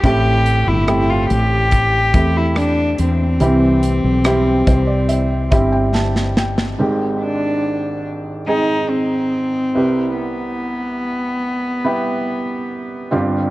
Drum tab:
HH |x-x-x-x-x-x-x-x-|x-x-x-x-x-x-----|----------------|----------------|
SD |----r-------r---|----r-------oooo|----------------|----------------|
BD |o-------o-o-----|------o---o-----|----------------|----------------|